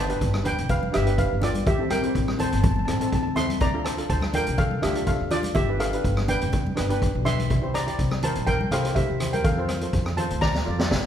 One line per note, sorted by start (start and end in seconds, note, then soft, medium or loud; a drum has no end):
0.00 0.12 G1 loud
0.00 0.43 C5 medium
0.00 0.48 A5 loud
0.08 0.31 D4 medium
0.08 0.32 G4 medium
0.08 0.32 B4 loud
0.08 closed hi-hat medium
0.21 0.51 G1 medium
0.21 kick medium
0.21 closed hi-hat medium
0.34 cross-stick medium
0.34 high conga medium
0.44 0.74 D4 medium
0.44 0.75 G4 medium
0.44 0.75 B4 medium
0.44 0.68 B4 medium
0.44 0.71 G5 loud
0.44 closed hi-hat medium
0.44 low conga medium
0.58 0.87 F1 medium
0.58 closed hi-hat medium
0.69 0.93 B4 medium
0.69 0.95 F5 loud
0.69 kick loud
0.69 closed hi-hat medium
0.69 low conga medium
0.83 high conga medium
0.92 1.25 G1 medium
0.92 1.01 D4 medium
0.92 1.01 G4 medium
0.92 1.17 G4 medium
0.92 1.02 B4 medium
0.92 1.19 E5 loud
0.92 cross-stick loud
0.92 closed hi-hat medium
1.05 1.28 D4 medium
1.05 1.28 G4 medium
1.05 1.29 B4 medium
1.05 closed hi-hat medium
1.18 1.41 B4 medium
1.18 1.44 F5 medium
1.18 kick loud
1.18 closed hi-hat medium
1.33 1.66 G1 medium
1.41 1.64 D4 medium
1.41 1.66 F4 medium
1.41 1.64 G4 medium
1.41 1.65 A4 medium
1.41 1.68 D5 medium
1.41 cross-stick medium
1.41 closed hi-hat medium
1.41 low conga medium
1.55 closed hi-hat medium
1.55 high conga medium
1.66 2.05 A1 loud
1.66 1.90 G4 medium
1.66 1.92 E5 loud
1.66 kick loud
1.66 closed hi-hat medium
1.66 low conga medium
1.79 1.93 C4 medium
1.79 1.94 E4 medium
1.79 1.94 A4 medium
1.90 2.37 A#4 medium
1.90 2.41 G5 loud
1.90 cross-stick medium
1.90 closed hi-hat medium
1.90 high conga medium
2.02 2.25 C4 medium
2.02 2.25 E4 medium
2.02 2.26 G4 medium
2.02 closed hi-hat medium
2.15 2.45 A1 medium
2.15 kick medium
2.15 closed hi-hat medium
2.28 cross-stick medium
2.28 high conga medium
2.38 2.68 C4 medium
2.38 2.69 E4 medium
2.38 2.69 A4 medium
2.38 2.47 C5 medium
2.38 2.46 A5 loud
2.38 closed hi-hat medium
2.38 low conga medium
2.47 2.54 A5 medium
2.52 2.81 G1 loud
2.52 2.62 A5 medium
2.52 closed hi-hat medium
2.63 2.70 A5 medium
2.63 kick loud
2.63 closed hi-hat medium
2.63 high conga medium
2.63 low conga medium
2.71 2.78 A5 medium
2.76 2.84 A5 medium
2.76 high conga medium
2.85 3.18 A1 medium
2.85 2.95 C4 medium
2.85 2.96 E4 medium
2.85 2.96 A4 medium
2.85 2.92 A5 medium
2.85 cross-stick medium
2.85 closed hi-hat medium
2.93 2.99 A5 medium
3.00 3.23 C4 medium
3.00 3.23 E4 medium
3.00 3.23 A4 medium
3.00 3.06 A5 medium
3.00 closed hi-hat medium
3.07 3.14 A5 medium
3.12 3.22 A5 medium
3.12 kick medium
3.12 closed hi-hat medium
3.23 3.30 A5 medium
3.27 3.61 C#2 medium
3.35 3.58 C4 medium
3.35 3.59 E4 medium
3.35 3.59 A4 medium
3.35 3.59 E5 medium
3.35 3.62 C6 loud
3.35 cross-stick medium
3.35 closed hi-hat medium
3.35 low conga medium
3.50 closed hi-hat medium
3.50 high conga medium
3.60 4.00 D2 loud
3.60 3.84 D5 medium
3.60 3.86 A#5 loud
3.60 kick loud
3.60 closed hi-hat medium
3.60 low conga medium
3.74 3.88 D4 medium
3.74 3.88 F4 medium
3.74 3.89 A4 medium
3.85 4.08 C5 medium
3.85 4.09 A5 medium
3.85 cross-stick loud
3.85 closed hi-hat loud
3.97 4.20 D4 medium
3.97 4.20 F4 medium
3.97 4.20 A4 medium
3.97 closed hi-hat medium
4.10 4.39 D2 medium
4.10 4.33 C5 medium
4.10 4.35 A5 loud
4.10 kick medium
4.10 closed hi-hat medium
4.21 cross-stick medium
4.21 high conga medium
4.33 4.63 D4 medium
4.33 4.64 F4 medium
4.33 4.64 A4 medium
4.33 4.57 A#4 medium
4.33 4.60 G5 loud
4.33 closed hi-hat medium
4.33 low conga medium
4.47 4.76 C2 medium
4.47 closed hi-hat medium
4.58 4.81 A4 medium
4.58 4.83 F5 medium
4.58 kick loud
4.58 closed hi-hat medium
4.58 low conga medium
4.71 high conga medium
4.82 5.13 D2 loud
4.82 4.90 D4 medium
4.82 4.90 F4 medium
4.82 5.06 G4 medium
4.82 4.91 A4 medium
4.82 5.08 E5 medium
4.82 cross-stick loud
4.82 closed hi-hat medium
4.94 5.17 D4 medium
4.94 5.17 F4 medium
4.94 5.18 A4 medium
4.94 closed hi-hat medium
5.07 5.30 A4 medium
5.07 5.32 F5 medium
5.07 kick medium
5.07 closed hi-hat medium
5.21 5.57 D2 medium
5.31 5.53 D4 medium
5.31 5.53 F4 medium
5.31 5.54 F4 medium
5.31 5.54 A4 medium
5.31 5.57 D5 loud
5.31 cross-stick medium
5.31 closed hi-hat medium
5.31 low conga medium
5.43 closed hi-hat medium
5.43 high conga medium
5.55 5.95 G1 loud
5.55 5.78 G4 medium
5.55 5.80 E5 loud
5.55 kick loud
5.55 closed hi-hat medium
5.55 low conga medium
5.68 5.82 D4 medium
5.68 5.83 G4 medium
5.68 5.83 B4 medium
5.80 6.25 A4 medium
5.80 6.25 F5 medium
5.80 cross-stick medium
5.80 closed hi-hat medium
5.93 6.15 D4 medium
5.93 6.15 G4 medium
5.93 6.15 B4 medium
5.93 closed hi-hat medium
6.04 6.34 G1 loud
6.04 kick medium
6.04 closed hi-hat medium
6.17 cross-stick medium
6.17 high conga medium
6.28 6.58 D4 medium
6.28 6.58 G4 medium
6.28 6.58 B4 medium
6.28 7.23 B4 medium
6.28 7.29 G5 loud
6.28 closed hi-hat medium
6.28 low conga medium
6.41 6.71 F1 medium
6.41 closed hi-hat medium
6.53 kick loud
6.53 closed hi-hat medium
6.53 low conga medium
6.66 high conga medium
6.76 7.08 G1 loud
6.76 6.84 D4 medium
6.76 6.85 G4 medium
6.76 6.85 B4 medium
6.76 cross-stick loud
6.76 closed hi-hat medium
6.89 7.11 D4 medium
6.89 7.12 G4 medium
6.89 7.12 B4 loud
6.89 closed hi-hat medium
7.02 kick loud
7.02 closed hi-hat medium
7.15 7.50 B1 loud
7.25 7.47 D4 medium
7.25 7.48 G4 medium
7.25 7.48 B4 medium
7.25 7.71 E5 medium
7.25 7.76 C6 loud
7.25 cross-stick medium
7.25 closed hi-hat medium
7.25 low conga medium
7.39 closed hi-hat medium
7.39 high conga medium
7.50 7.89 C2 loud
7.50 kick loud
7.50 closed hi-hat medium
7.50 low conga medium
7.62 7.76 E4 medium
7.62 7.77 G4 medium
7.62 7.77 C5 medium
7.74 8.20 D5 medium
7.74 8.25 A#5 medium
7.74 cross-stick medium
7.74 closed hi-hat loud
7.86 8.09 E4 medium
7.86 8.09 G4 medium
7.86 8.09 D5 medium
7.86 closed hi-hat medium
7.99 8.28 C2 loud
7.99 kick medium
7.99 closed hi-hat medium
8.11 cross-stick medium
8.11 high conga medium
8.23 8.52 E4 medium
8.23 8.53 G4 medium
8.23 8.53 A#4 medium
8.23 8.35 C5 medium
8.23 8.35 A5 loud
8.23 closed hi-hat medium
8.23 low conga medium
8.35 8.65 A#1 medium
8.35 closed hi-hat medium
8.47 8.70 A#4 medium
8.47 8.70 G5 loud
8.47 kick loud
8.47 closed hi-hat medium
8.47 low conga medium
8.61 high conga medium
8.71 9.01 C2 loud
8.71 8.79 E4 medium
8.71 8.80 G4 medium
8.71 8.95 A4 medium
8.71 8.80 C5 loud
8.71 8.97 F5 medium
8.71 cross-stick medium
8.71 closed hi-hat loud
8.85 9.06 E4 medium
8.85 9.07 G4 medium
8.85 9.07 C5 medium
8.85 closed hi-hat medium
8.95 9.31 G4 medium
8.95 9.34 E5 medium
8.95 kick medium
8.95 closed hi-hat medium
9.10 9.45 C2 medium
9.20 9.42 E4 medium
9.20 9.43 G4 medium
9.20 9.43 C5 medium
9.20 cross-stick medium
9.20 closed hi-hat loud
9.20 low conga medium
9.33 9.44 A#4 medium
9.33 9.45 G5 medium
9.33 closed hi-hat medium
9.33 high conga medium
9.44 9.83 F2 loud
9.44 9.90 A4 medium
9.44 9.90 F5 medium
9.44 kick loud
9.44 closed hi-hat medium
9.44 low conga medium
9.58 9.72 F4 medium
9.58 9.72 A4 medium
9.58 9.72 C5 medium
9.69 cross-stick medium
9.69 closed hi-hat medium
9.69 high conga medium
9.81 10.03 F4 medium
9.81 10.04 A4 medium
9.81 10.04 C5 medium
9.81 closed hi-hat medium
9.93 10.23 F2 medium
9.93 kick loud
9.93 closed hi-hat medium
10.06 cross-stick medium
10.17 10.47 F4 medium
10.17 10.47 A4 medium
10.17 10.41 C5 medium
10.17 10.48 C5 medium
10.17 10.43 A5 loud
10.17 closed hi-hat medium
10.17 low conga medium
10.30 10.60 D2 loud
10.30 closed hi-hat medium
10.41 11.06 D5 medium
10.41 11.06 A#5 loud
10.41 kick loud
10.41 snare medium
10.41 high conga medium
10.41 low conga medium
10.54 snare medium
10.54 high conga medium
10.65 10.87 F2 loud
10.65 10.74 F4 medium
10.65 10.74 A4 medium
10.65 10.75 D5 medium
10.78 11.01 F4 medium
10.78 11.01 A4 medium
10.78 11.02 D5 medium
10.78 snare medium
10.78 high conga medium
10.91 11.06 G1 medium
10.91 kick medium
10.91 snare loud
10.91 high conga medium